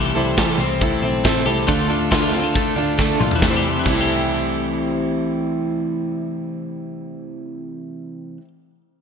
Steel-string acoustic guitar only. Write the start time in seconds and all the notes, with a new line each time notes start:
Already playing: C3 E3 G3 C4 E4 A4
0.15 G3 C4 E4 A4
0.37 C3 E3 G3 C4 E4 A4
0.59 G3 C4 E4 A4
0.81 G3 C4 E4 A4
1.03 G3 C4 E4 A4
1.24 C3 E3 G3 C4 E4 A4
1.46 G3 C4 E4 A4
1.67 D3 A3 D4 F4 A4
1.89 D4 F4 A4
2.11 D3 A3 D4 F4 A4
2.33 D4 F4 A4
2.55 A3 D4 F4 A4
2.76 D4 F4 A4
2.98 D3 A3 D4 F4 A4
3.20 D4 F4 A4
3.38 C3 E3
3.44 G3 C4
3.49 E4 A4
3.81 C3 E3
3.86 G3 C4
3.90 E4 A4